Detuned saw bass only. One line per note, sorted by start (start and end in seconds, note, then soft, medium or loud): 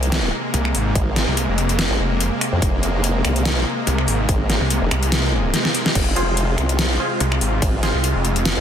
0.54 0.73 C2 loud
0.75 0.94 G#1 loud
1.28 1.47 C2 loud
1.48 1.88 F1 loud
2.00 2.30 F1 loud
3.87 4.06 C2 loud
4.08 4.27 G#1 loud
4.61 4.80 C2 loud
4.91 5.52 C2 loud
7.20 7.40 C2 loud
7.41 7.61 G#1 loud
7.94 8.13 C2 loud
8.15 8.55 F1 loud